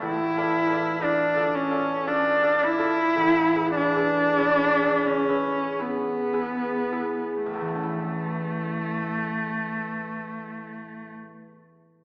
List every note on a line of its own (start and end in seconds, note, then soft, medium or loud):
0.00 3.15 A1 soft
0.00 0.36 F4 soft
0.00 0.37 A4 soft
0.00 0.37 D5 soft
0.05 1.05 E4 medium
0.37 0.67 F4 soft
0.37 0.68 A4 soft
0.37 0.69 D5 soft
0.67 1.01 F4 soft
0.67 1.01 A4 soft
0.72 1.01 D5 soft
1.02 1.56 D4 medium
1.02 1.35 F4 soft
1.02 1.35 A4 soft
1.02 1.36 D5 soft
1.36 1.69 F4 soft
1.36 1.70 A4 soft
1.36 1.70 D5 soft
1.55 2.09 C#4 medium
1.71 2.05 F4 soft
1.71 2.06 A4 soft
1.71 2.06 D5 soft
2.06 2.65 D4 medium
2.06 2.41 F4 soft
2.06 2.42 A4 soft
2.06 2.42 D5 soft
2.42 2.77 F4 soft
2.42 2.77 A4 soft
2.42 2.77 D5 soft
2.63 3.76 E4 medium
2.78 3.20 F4 soft
2.78 3.20 A4 soft
2.78 6.69 D5 soft
3.16 7.06 A1 soft
3.55 3.95 E4 soft
3.55 3.95 G#4 soft
3.55 3.95 B4 soft
3.77 5.08 D4 medium
3.96 4.36 E4 soft
3.96 4.36 G#4 soft
3.96 4.37 B4 soft
4.37 4.81 E4 soft
4.37 4.81 G#4 soft
4.37 4.82 B4 soft
4.81 5.27 E4 soft
4.81 5.28 G#4 soft
4.81 5.29 B4 soft
5.07 5.82 C#4 soft
5.29 5.78 E4 soft
5.29 5.79 G#4 soft
5.29 5.79 B4 soft
5.79 7.46 B3 soft
5.79 6.32 E4 soft
5.79 6.32 G#4 soft
5.79 6.33 B4 soft
6.33 6.91 E4 soft
6.33 6.91 G#4 soft
6.33 6.92 B4 soft
6.92 7.82 E4 soft
6.92 7.53 G#4 soft
6.92 7.54 B4 soft
7.46 11.36 A1 soft
7.46 11.10 A3 soft
7.54 11.44 E2 soft
7.61 11.51 E3 soft
7.68 11.32 A3 soft
7.76 11.39 C#4 soft
7.83 11.47 E4 soft